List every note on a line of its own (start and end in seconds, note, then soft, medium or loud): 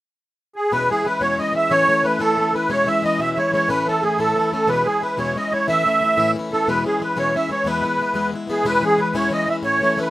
0.56 0.72 G#4 medium
0.72 0.89 E2 medium
0.72 0.90 B2 medium
0.72 0.87 E3 medium
0.72 0.89 G#3 medium
0.72 0.90 C#4 medium
0.72 0.91 E4 medium
0.72 0.90 B4 loud
0.89 1.03 E3 medium
0.89 1.04 G#3 medium
0.89 1.05 C#4 medium
0.89 1.06 E4 medium
0.89 1.06 G#4 medium
1.04 1.20 E3 medium
1.04 1.20 G#3 medium
1.04 1.21 C#4 medium
1.04 1.22 E4 medium
1.04 1.22 B4 medium
1.20 1.38 E2 medium
1.20 1.39 B2 medium
1.20 1.36 E3 medium
1.20 1.38 G#3 medium
1.20 1.39 C#4 medium
1.20 1.40 E4 medium
1.20 1.39 C#5 medium
1.37 1.51 E3 medium
1.37 1.53 G#3 soft
1.37 1.54 C#4 medium
1.37 1.55 E4 medium
1.37 1.54 D#5 medium
1.52 1.70 E3 medium
1.52 1.70 G#3 medium
1.52 1.70 C#4 medium
1.52 1.71 E4 medium
1.52 1.72 E5 medium
1.69 1.88 A2 medium
1.69 1.85 E3 medium
1.69 1.87 A3 medium
1.69 1.88 C#4 medium
1.69 1.89 E4 medium
1.69 2.06 C#5 loud
1.86 2.02 E3 medium
1.86 2.03 A3 medium
1.86 2.04 C#4 medium
1.86 2.05 E4 medium
2.03 2.18 E3 medium
2.03 2.19 A3 medium
2.03 2.19 C#4 medium
2.03 2.20 E4 medium
2.03 2.21 B4 medium
2.19 2.37 A2 medium
2.19 2.36 E3 medium
2.19 2.37 A3 medium
2.19 2.38 C#4 medium
2.19 2.38 E4 medium
2.19 2.55 A4 medium
2.37 2.51 E3 medium
2.37 2.52 A3 soft
2.37 2.53 C#4 medium
2.37 2.54 E4 medium
2.52 2.69 E3 soft
2.52 2.69 A3 medium
2.52 2.69 C#4 medium
2.52 2.70 E4 medium
2.52 2.71 B4 medium
2.68 2.87 E2 medium
2.68 2.87 B2 medium
2.68 2.84 E3 medium
2.68 2.86 G#3 medium
2.68 2.86 C#4 medium
2.68 2.87 E4 medium
2.68 2.89 C#5 medium
2.85 3.01 E3 medium
2.85 3.03 G#3 medium
2.85 3.04 C#4 medium
2.85 3.04 E4 medium
2.85 3.04 E5 medium
3.02 3.19 E3 medium
3.02 3.19 G#3 medium
3.02 3.20 C#4 medium
3.02 3.21 E4 medium
3.02 3.20 D#5 medium
3.19 3.37 E2 medium
3.19 3.37 B2 medium
3.19 3.35 E3 medium
3.19 3.36 G#3 medium
3.19 3.38 C#4 medium
3.19 3.39 E4 medium
3.19 3.38 E5 medium
3.36 3.50 E3 soft
3.36 3.52 G#3 medium
3.36 3.53 C#4 medium
3.36 3.54 E4 medium
3.36 3.51 C#5 medium
3.52 3.67 E3 soft
3.52 3.69 G#3 medium
3.52 3.69 C#4 medium
3.52 3.69 E4 medium
3.52 3.70 C#5 medium
3.68 3.86 A2 medium
3.68 3.85 E3 medium
3.68 3.86 A3 medium
3.68 3.87 C#4 medium
3.68 3.87 E4 medium
3.68 3.88 B4 medium
3.86 4.01 E3 medium
3.86 4.02 A3 medium
3.86 4.03 C#4 medium
3.86 4.04 E4 medium
3.86 4.04 A4 medium
4.02 4.17 E3 medium
4.02 4.17 A3 medium
4.02 4.18 C#4 medium
4.02 4.19 E4 medium
4.02 4.19 G#4 medium
4.18 4.36 A2 medium
4.18 4.35 E3 medium
4.18 4.36 A3 medium
4.18 4.37 C#4 medium
4.18 4.37 E4 medium
4.18 4.52 A4 medium
4.36 4.50 E3 medium
4.36 4.51 A3 medium
4.36 4.52 C#4 medium
4.36 4.53 E4 medium
4.51 4.67 E3 medium
4.51 4.69 A3 medium
4.51 4.68 C#4 medium
4.51 4.68 E4 medium
4.51 4.70 A4 medium
4.67 4.86 E2 medium
4.67 4.86 B2 medium
4.67 4.83 E3 medium
4.67 4.84 G#3 medium
4.67 4.86 C#4 medium
4.67 4.86 E4 medium
4.67 4.87 B4 medium
4.84 4.99 E3 medium
4.84 5.00 G#3 medium
4.84 5.01 C#4 medium
4.84 5.02 E4 medium
4.84 5.03 G#4 medium
5.00 5.17 E3 soft
5.00 5.17 G#3 medium
5.00 5.18 C#4 medium
5.00 5.19 E4 medium
5.00 5.19 B4 medium
5.17 5.35 E2 medium
5.17 5.36 B2 medium
5.17 5.33 E3 medium
5.17 5.35 G#3 medium
5.17 5.36 C#4 medium
5.17 5.36 E4 medium
5.17 5.37 C#5 medium
5.35 5.50 E3 medium
5.35 5.51 G#3 soft
5.35 5.52 C#4 medium
5.35 5.53 E4 medium
5.35 5.53 D#5 medium
5.51 5.67 E3 soft
5.51 5.68 G#3 medium
5.51 5.68 C#4 medium
5.51 5.68 E4 medium
5.51 5.67 C#5 medium
5.67 5.85 A2 medium
5.67 5.83 E3 medium
5.67 5.85 A3 medium
5.67 5.86 C#4 medium
5.67 5.86 E4 medium
5.67 6.31 E5 loud
5.85 6.00 E3 medium
5.85 6.01 A3 medium
5.85 6.02 C#4 soft
5.85 6.03 E4 medium
6.01 6.16 E3 medium
6.01 6.17 A3 medium
6.01 6.17 C#4 medium
6.01 6.18 E4 medium
6.17 6.35 A2 medium
6.17 6.34 E3 medium
6.17 6.35 A3 medium
6.17 6.36 C#4 medium
6.17 6.36 E4 medium
6.36 6.50 E3 medium
6.36 6.51 A3 medium
6.36 6.52 C#4 medium
6.36 6.53 E4 medium
6.51 6.67 E3 medium
6.51 6.67 A3 medium
6.51 6.68 C#4 medium
6.51 6.68 E4 medium
6.51 6.68 A4 medium
6.67 6.85 E2 medium
6.67 6.85 B2 medium
6.67 6.83 E3 medium
6.67 6.84 G#3 medium
6.67 6.85 C#4 medium
6.67 6.86 E4 medium
6.67 6.84 B4 medium
6.84 6.99 E3 medium
6.84 7.01 G#3 medium
6.84 7.01 C#4 medium
6.84 7.02 E4 medium
6.84 7.02 G#4 medium
7.00 7.16 E3 medium
7.00 7.16 G#3 medium
7.00 7.16 C#4 medium
7.00 7.17 E4 medium
7.00 7.18 B4 medium
7.16 7.34 E2 medium
7.16 7.34 B2 medium
7.16 7.33 E3 medium
7.16 7.34 G#3 medium
7.16 7.35 C#4 medium
7.16 7.35 E4 medium
7.16 7.36 C#5 medium
7.34 7.48 E3 medium
7.34 7.50 G#3 soft
7.34 7.51 C#4 medium
7.34 7.51 E4 medium
7.34 7.50 E5 medium
7.49 7.65 E3 medium
7.49 7.65 G#3 soft
7.49 7.66 C#4 medium
7.49 7.66 E4 medium
7.49 7.67 C#5 medium
7.64 7.83 E2 medium
7.64 7.83 B2 medium
7.64 7.81 E3 medium
7.64 7.82 G#3 medium
7.64 7.82 B3 medium
7.64 7.84 E4 medium
7.64 8.30 B4 medium
7.82 7.98 E3 medium
7.82 7.99 G#3 medium
7.82 8.00 B3 medium
7.82 8.00 E4 medium
7.99 8.14 E3 soft
7.99 8.14 G#3 medium
7.99 8.15 B3 medium
7.99 8.15 E4 medium
8.14 8.32 E2 medium
8.14 8.33 B2 medium
8.14 8.31 E3 medium
8.14 8.32 G#3 medium
8.14 8.33 B3 medium
8.14 8.34 E4 medium
8.32 8.46 E3 medium
8.32 8.47 G#3 medium
8.32 8.48 B3 medium
8.32 8.49 E4 medium
8.47 8.64 E3 medium
8.47 8.64 G#3 medium
8.47 8.65 B3 medium
8.47 8.65 E4 medium
8.47 8.66 G#4 medium
8.64 8.82 E2 medium
8.64 8.82 B2 medium
8.64 8.80 E3 medium
8.64 8.81 G#3 medium
8.64 8.82 C#4 medium
8.64 8.83 E4 medium
8.64 8.84 B4 loud
8.81 8.97 E3 medium
8.81 8.97 G#3 medium
8.81 8.98 C#4 medium
8.81 9.00 E4 medium
8.85 9.00 G#4 medium
8.98 9.13 E3 soft
8.98 9.14 G#3 medium
8.98 9.14 C#4 medium
8.98 9.14 E4 medium
8.98 9.16 B4 medium
9.13 9.32 E2 medium
9.13 9.32 B2 medium
9.13 9.29 E3 medium
9.13 9.30 G#3 medium
9.13 9.31 C#4 medium
9.13 9.33 E4 medium
9.13 9.32 C#5 medium
9.31 9.45 E3 medium
9.31 9.46 G#3 medium
9.31 9.47 C#4 medium
9.31 9.48 E4 medium
9.31 9.49 D#5 medium
9.46 9.62 E3 medium
9.46 9.64 G#3 medium
9.46 9.63 C#4 medium
9.46 9.64 E4 medium
9.46 9.57 E5 medium
9.63 9.81 A2 medium
9.63 9.80 E3 medium
9.63 9.82 A3 medium
9.63 9.82 C#4 medium
9.63 9.82 E4 medium
9.63 9.99 C#5 loud
9.81 9.95 E3 medium
9.81 9.96 A3 medium
9.81 9.97 C#4 medium
9.81 9.98 E4 medium
9.96 10.10 E3 medium
9.96 10.10 A3 medium
9.96 10.10 C#4 medium
9.96 10.10 E4 medium
9.96 10.10 B4 medium